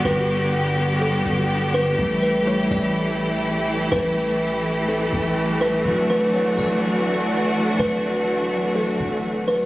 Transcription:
Already playing: D3 G3 B3 F#4 G4
0.05 G1 B4
1.01 A4
1.26 G1
1.74 B4
1.98 A1 E3 A3 E4
2.22 B4
2.47 C#5
2.71 A1 D5
3.92 A1 B4
4.89 A4
5.13 A1
5.61 B4
5.85 D1 F#3 D4 F#4
6.10 B4
6.33 C#5
6.58 D1 D5
7.79 D1 B4
8.75 A4
9.00 D1
9.48 B4

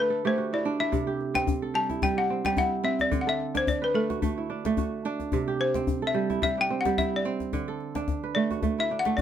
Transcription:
Already playing: D3 A3 D4 B4 D5 E5 F#5
0.00 B4
0.10 A4
0.25 A3 G4 C5
0.38 F#4
0.53 E4 D5
0.65 D4
0.80 E4 E5
0.92 C3, djembe bass
1.07 G4
1.21 djembe slap
1.34 C4 G5, djembe slap, djembe tone
1.47 djembe bass
1.62 A4
1.74 G3 A5, djembe slap
1.90 E4, djembe tone
2.02 G3 G5, djembe bass
2.17 D4 F#5
2.30 C4
2.45 G3 G5, djembe slap, djembe tone
2.57 E4 F#5, djembe bass
2.84 C4 E5
3.00 D5, djembe slap, djembe tone
3.11 D3, djembe bass
3.21 F#5
3.27 A4 E5
3.40 djembe slap
3.55 D4 C5, djembe slap, djembe tone
3.67 D5, djembe bass
3.82 B4
3.94 A3 A4
4.10 F#4, djembe tone
4.22 A3, djembe bass
4.38 E4
4.50 D4
4.65 A3, djembe slap, djembe tone
4.77 F#4, djembe bass
5.05 D4
5.20 djembe slap, djembe tone
5.32 C3, djembe bass
5.48 G4
5.60 C5, djembe slap
5.74 C4, djembe slap, djembe tone
5.87 djembe bass
6.02 A4
6.07 E5
6.14 G3
6.30 E4, djembe tone
6.42 G3 E5, djembe bass
6.58 D4 G5
6.70 C4
6.81 F#5
6.85 G3, djembe slap, djembe tone
6.98 E4 E5, djembe bass
7.16 D5
7.25 C4
7.40 djembe slap, djembe tone
7.53 D3, djembe bass
7.68 A4
7.80 djembe slap
7.95 D4, djembe slap, djembe tone
8.08 djembe slap, djembe bass
8.24 B4
8.35 A3 D5
8.51 F#4, djembe tone
8.62 A3, djembe slap, djembe bass
8.78 E4 E5, djembe slap
8.91 D4
8.99 F#5
9.05 A3, djembe slap
9.17 D5, djembe bass

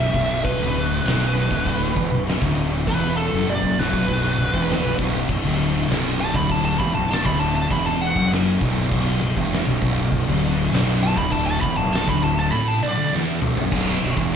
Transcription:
Already playing: B0 E5
0.00 B1
0.14 B0 B1, kick
0.44 B0 B1 B4, kick, crash
0.59 D1 D2
0.79 snare
1.05 B0 B1, snare, crash
1.51 D1 D2, kick
1.66 kick, crash
1.97 E1 E2, kick
2.11 B0 B1
2.27 snare, crash
2.42 D1 D2, kick
2.87 E1 E2 B4, kick, crash
3.17 A4
3.33 F#1 F#2
3.47 D5, high tom
3.63 kick
3.78 B0 B1 B4, snare
3.93 kick
4.08 B0 B1, kick, crash
4.38 B0 B1
4.53 E1 E2, kick
4.69 snare, crash
4.84 B0 B1
4.98 B0 B1, kick
5.29 B0 B1, kick, crash
5.44 D1 D2
5.61 snare
5.89 B0 B1, snare, crash
6.21 A5
6.34 D1 D2 B5, kick
6.50 A5, kick, crash
6.65 A5
6.79 E1 E2 B5, kick
6.94 B0 B1 A5
7.09 A5, crash
7.13 snare
7.25 D1 D2 B5, kick
7.39 A5
7.56 A5
7.71 E1 E2 B5, kick, crash
7.86 A5
8.01 F#5
8.16 F#1 F#2, kick
8.31 snare, crash
8.61 B0 B1, kick
8.91 B0 B1, kick, crash
9.21 B0 B1
9.36 E1 E2, kick
9.52 snare, crash
9.66 B0 B1
9.81 B0 B1, kick
10.12 B0 B1, kick, crash
10.27 D1 D2
10.45 snare
10.72 B0 B1, snare, crash
11.03 A5
11.17 D1 D2 B5, kick
11.32 A5, kick, crash
11.47 A5
11.61 E1 E2 B5, kick
11.77 B0 B1 A5
11.93 A5, snare, crash
12.07 D1 D2 B5, kick
12.24 A5
12.40 A5
12.52 A2 B5
12.68 A5
12.82 B1 D5
12.97 D2
13.12 E2, snare
13.42 B1, mid tom
13.57 F#2, floor tom
13.72 B0 B1, kick, crash
14.02 B0 B1
14.17 E1 E2, kick
14.32 crash

